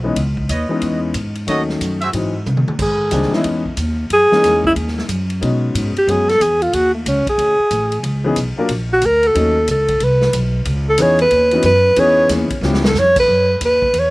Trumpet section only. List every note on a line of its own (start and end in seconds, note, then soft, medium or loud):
0.49 0.99 B4 medium
0.49 0.99 C#5 medium
0.49 0.99 D#5 medium
1.48 1.62 F#4 medium
1.48 1.62 A4 medium
1.48 1.62 C#5 medium
1.48 1.62 D#5 medium
2.01 2.09 F#4 medium
2.01 2.09 G#4 medium
2.01 2.09 C5 medium
2.01 2.09 E5 medium